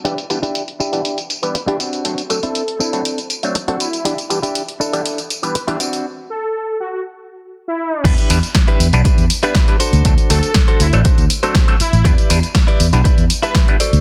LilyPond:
<<
  \new Staff \with { instrumentName = "Analog polysynth" } { \time 4/4 \key e \minor \tempo 4 = 120 r2 r8. b'16 r4 | r8 a'4 e'16 r4. r16 e'8 | r2 r8. b'16 r4 | r8 a'4 fis'16 fis'16 r4 r16 e'8. |
r2 r8. b'16 r4 | r8 a'4 e'16 r4. r16 e'8 | r2 r8. b'16 r4 | }
  \new Staff \with { instrumentName = "Clean electric guitar" } { \time 4/4 \key e \minor <d' e' g'>16 r8 <d' e' g'>16 r8 <d' e' g'>8. r4 <d' e' g'>16 <c' d' fis'>8~ | <c' d' fis'>16 r8 <c' d' e'>16 r8 <c' d' a'>8. r4 <c' d' fis'>16 r8 | <d' e' g'>16 r8 <d' e' g'>16 r8 <d' e' a'>8. r4 <d' e' g'>16 <c' d' fis'>8 | r1 |
<d' e' g' b'>8 r8. <d' e' g' b'>16 r8 <d' e' g' b'>8 r16 <d' e' g' b'>8. <d' fis' a' c''>8~ | <d' fis' a' c''>4 r16 <d' fis' a' c''>16 r8 <d' fis' a' c''>8 r16 <d' fis' a' c''>8. r8 | <e' g' b' d''>8 r8. <e' g' b' d''>16 r8 <e' g' b' d''>8 r16 <e' g' b' e''>8. <fis' a' c'' d''>8 | }
  \new Staff \with { instrumentName = "Clav" } { \time 4/4 \key e \minor <e g b d' g'>16 r16 <e g b d' g'>16 r4 <e g b d' g'>16 r8. <e g b d' g'>16 r16 <e g b d' g'>16 r8 | <fis a c' d' a'>16 r16 <fis a c' d' a'>16 r4 <fis a c' d' a'>16 r8. <fis a c' d' a'>16 r16 <fis a c' d' a'>16 r8 | <e g b d' g'>16 r16 <e g b d' g'>16 r4 <e g b d' g'>16 r8. <e g b d' g'>16 r16 <e g b d' g'>16 r8 | r1 |
<g b d' e' b'>16 r16 <g b d' e' b'>16 r4 <g b d' e' b'>16 r8. <g b d' e' b'>16 r16 <g b d' e' b'>16 r8 | <fis a c' d' a'>16 r16 <fis a c' d' a'>16 r4 <fis a c' d' a'>16 r8. <fis a c' d' a'>16 r16 <fis a c' d' a'>16 r8 | <g b d' e' b'>16 r16 <g b d' e' b'>16 r4 <g b d' e' b'>16 r8. <g b d' e' b'>16 r16 <g b d' e' b'>16 r8 | }
  \new Staff \with { instrumentName = "Fingered electric bass" } { \clef bass \time 4/4 \key e \minor r1 | r1 | r1 | r1 |
e,16 r16 e,16 r8. e,16 b,,16 r16 e,16 r4 r16 d,16 | d,16 r16 d,16 r8. d,16 a,,16 r16 d,16 r4 r16 a,,16 | e,16 r16 e,16 r8. e,16 b,,16 r16 e,16 r4 r16 d,16 | }
  \new DrumStaff \with { instrumentName = "Drums" } \drummode { \time 4/4 <hh tamb>16 <hh tamb>16 <hh tamb>16 <hh tamb>16 <hh tamb>16 hh16 tamb16 <hh tamb>16 <hh tamb>16 <hh tamb>16 <hh tamb>16 <hh tamb>16 <hh tamb>16 hh16 <hh tamb>16 <hh tamb>16 | <hh tamb>16 <hh tamb>16 <hh tamb>16 <hh tamb>16 <hh tamb>16 hh16 tamb16 <hh tamb>16 <hh tamb>16 <hh tamb>16 <hh tamb>16 <hh tamb>16 <hh tamb>16 hh16 <hh tamb>16 <hh tamb>16 | <hh tamb>16 <hh tamb>16 <hh tamb>16 <hh tamb>16 <hh tamb>16 hh16 tamb16 <hh tamb>16 <hh tamb>16 <hh tamb>16 <hh tamb>16 <hh tamb>16 <hh tamb>16 hh16 <hh tamb>16 <hh tamb>16 | r4 r4 r4 r4 |
<cymc hh bd tamb>16 <hh tamb>16 <hho tamb>16 <hh tamb>16 <hh bd sn tamb>16 hh16 <hho tamb>16 <hh tamb>16 <hh bd tamb>16 <hh tamb>16 <hho tamb>16 <hh tamb>16 <hh bd sn tamb>16 hh16 <hho tamb>16 <hh tamb>16 | <hh bd tamb>16 <hh tamb>16 <hho tamb>16 <hh tamb>16 <hh bd sn tamb>16 hh16 <hho tamb>16 <hh tamb>16 <hh bd tamb>16 <hh tamb>16 <hho tamb>16 <hh tamb>16 <hh bd sn tamb>16 hh16 <hho tamb>16 <hh tamb>16 | <hh bd tamb>16 <hh tamb>16 <hho tamb>16 <hh tamb>16 <hh bd sn tamb>16 hh16 <hho tamb>16 <hh tamb>16 <hh bd tamb>16 <hh tamb>16 <hho tamb>16 <hh tamb>16 <hh bd sn tamb>16 hh16 <hho tamb>16 <hh tamb>16 | }
>>